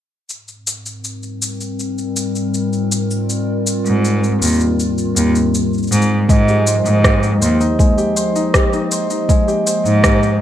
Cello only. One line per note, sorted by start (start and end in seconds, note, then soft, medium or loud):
3.86 4.32 G#2 medium
4.42 4.55 D#2 medium
5.17 5.29 D#2 medium
5.92 6.17 G#2 medium
6.29 6.76 G#2 medium
6.85 7.32 G#2 medium
7.42 7.54 D#2 medium
9.85 10.32 G#2 medium